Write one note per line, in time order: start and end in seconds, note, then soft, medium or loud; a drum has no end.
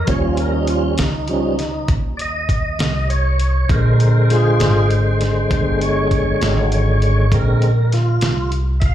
0.07 0.96 D#2 medium
0.07 0.94 F3 soft
0.07 0.95 G3 soft
0.07 0.84 C#4 medium
0.07 0.23 C#5 medium
0.07 kick loud
0.07 closed hi-hat medium
0.25 0.38 F4 medium
0.37 0.53 A#4 medium
0.37 closed hi-hat medium
0.53 0.67 D#4 medium
0.67 0.83 F4 medium
0.67 closed hi-hat medium
0.85 0.98 C#4 medium
0.98 1.87 C#2 medium
0.98 1.28 D#4 medium
0.98 snare loud
0.98 closed hi-hat medium
1.28 1.56 F3 soft
1.28 1.56 G3 soft
1.28 1.57 C#4 soft
1.28 1.88 D#4 medium
1.28 closed hi-hat medium
1.59 snare soft
1.59 closed hi-hat medium
1.88 2.76 D#2 medium
1.88 kick loud
1.88 closed hi-hat medium
2.17 2.20 D5 medium
2.17 closed hi-hat medium
2.21 3.08 D#5 loud
2.49 kick medium
2.49 closed hi-hat medium
2.79 3.67 C2 medium
2.79 snare loud
2.79 closed hi-hat medium
3.10 3.39 C#5 loud
3.10 closed hi-hat medium
3.40 3.69 C#5 medium
3.40 closed hi-hat medium
3.69 4.58 A#1 medium
3.69 7.27 D3 soft
3.69 7.27 G#3 soft
3.69 4.00 A#4 medium
3.69 5.76 C5 medium
3.69 kick loud
3.69 closed hi-hat medium
4.00 4.30 A#4 medium
4.00 closed hi-hat medium
4.30 4.87 F4 medium
4.30 4.90 G#4 loud
4.30 snare soft
4.30 closed hi-hat medium
4.60 5.48 G#1 loud
4.60 snare loud
4.60 closed hi-hat medium
4.90 closed hi-hat medium
5.21 snare soft
5.21 closed hi-hat medium
5.51 6.38 G1 medium
5.51 kick loud
5.51 closed hi-hat medium
5.78 5.81 C5 medium
5.78 closed hi-hat medium
5.83 6.69 C#5 loud
6.11 kick medium
6.11 closed hi-hat medium
6.41 7.29 G#1 loud
6.41 snare loud
6.41 closed hi-hat medium
6.72 7.02 C#5 medium
6.72 closed hi-hat medium
7.02 7.32 C#5 medium
7.02 closed hi-hat medium
7.32 8.19 A#1 medium
7.32 7.72 D3 medium
7.32 7.72 G#3 medium
7.32 7.73 C4 medium
7.32 7.62 A#4 medium
7.32 kick loud
7.32 closed hi-hat medium
7.62 7.92 A#4 medium
7.62 closed hi-hat medium
7.92 8.51 F4 loud
7.92 snare soft
7.92 closed hi-hat medium
8.21 8.95 C2 medium
8.21 snare loud
8.21 closed hi-hat medium
8.52 closed hi-hat medium
8.80 8.83 E5 medium
8.80 kick medium
8.80 closed hi-hat medium
8.85 8.95 F5 loud